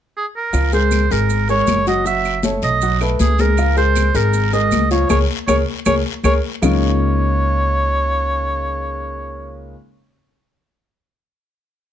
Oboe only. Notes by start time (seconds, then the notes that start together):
0.17 G#4
0.37 A#4
0.74 C5
1.12 A#4
1.50 C#5
1.88 D#5
2.07 E5
2.64 D#5
3.21 G#4
3.41 A#4
3.78 C5
4.16 A#4
4.54 D#5
4.92 C#5
5.10 C#5
5.47 C#5
5.86 C#5
6.24 C#5
6.63 C#5